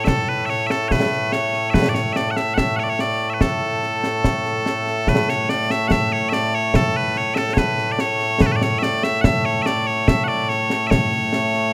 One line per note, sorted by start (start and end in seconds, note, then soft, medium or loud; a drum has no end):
0.00 11.73 A2 medium
0.00 11.73 A3 medium
0.04 0.29 A4 medium
0.04 0.08 E5 medium
0.04 concert bass drum medium
0.04 snare loud
0.29 0.46 B4 medium
0.46 0.50 E5 medium
0.46 snare soft
0.50 0.67 C#5 medium
0.67 0.71 E5 medium
0.67 snare medium
0.71 0.89 A4 medium
0.89 1.33 B4 medium
0.89 0.92 C#5 medium
0.89 concert bass drum medium
0.89 snare loud
1.12 snare soft
1.32 1.70 C#5 medium
1.32 snare medium
1.53 snare soft
1.70 1.89 B4 medium
1.70 1.74 E5 medium
1.70 concert bass drum medium
1.70 snare loud
1.89 1.94 D5 medium
1.94 2.13 C#5 medium
1.94 snare medium
2.13 2.31 D5 medium
2.13 2.17 E5 medium
2.13 snare medium
2.31 2.37 F#5 medium
2.37 2.54 E5 medium
2.37 snare medium
2.54 2.76 E5 medium
2.54 2.58 F#5 medium
2.54 concert bass drum medium
2.54 snare loud
2.76 2.83 C#5 medium
2.76 2.79 F#5 medium
2.83 2.90 D5 medium
2.90 3.00 C#5 medium
2.99 3.30 D5 medium
2.99 snare medium
3.30 3.41 B4 medium
3.30 3.34 E5 medium
3.41 5.09 A4 medium
3.41 concert bass drum medium
3.41 snare medium
3.83 snare soft
4.04 snare medium
4.24 concert bass drum medium
4.24 snare medium
4.45 snare soft
4.66 snare medium
4.87 snare soft
5.07 5.30 B4 loud
5.07 concert bass drum medium
5.07 snare loud
5.29 5.49 C#5 medium
5.29 snare medium
5.49 5.71 D5 loud
5.49 snare medium
5.70 5.88 E5 loud
5.70 snare medium
5.88 6.13 E5 loud
5.88 5.91 F#5 loud
5.88 concert bass drum medium
5.88 snare loud
6.13 6.29 C#5 medium
6.29 6.33 E5 loud
6.29 snare medium
6.33 6.55 D5 loud
6.55 6.76 C#5 medium
6.74 6.97 A4 medium
6.74 concert bass drum medium
6.74 snare medium
6.97 7.18 B4 medium
7.16 7.35 C#5 medium
7.16 snare soft
7.35 7.54 A4 medium
7.35 7.38 E5 medium
7.35 snare medium
7.54 7.58 C#5 medium
7.54 concert bass drum medium
7.54 snare loud
7.58 7.92 B4 medium
7.78 snare soft
7.92 8.00 D5 medium
7.99 8.42 C#5 loud
7.99 snare medium
8.20 snare soft
8.40 8.47 B4 loud
8.40 concert bass drum medium
8.40 snare loud
8.47 8.52 A4 medium
8.52 8.56 B4 medium
8.56 8.63 D5 medium
8.61 8.79 C#5 medium
8.61 snare medium
8.79 8.83 E5 loud
8.79 snare medium
8.83 9.04 D5 loud
9.03 9.21 E5 loud
9.03 snare medium
9.21 9.45 E5 loud
9.21 9.24 F#5 loud
9.21 concert bass drum medium
9.21 snare loud
9.45 9.62 C#5 medium
9.62 9.87 D5 loud
9.62 9.66 E5 loud
9.62 snare medium
9.87 10.08 C#5 medium
10.08 10.24 E5 loud
10.08 concert bass drum medium
10.08 snare loud
10.24 10.28 F#5 medium
10.28 10.49 D5 medium
10.49 10.87 C#5 loud
10.49 snare soft
10.70 snare medium
10.87 11.73 C#5 loud
10.87 10.91 E5 loud
10.91 concert bass drum medium
10.91 snare loud
11.12 snare soft
11.33 snare medium
11.54 snare soft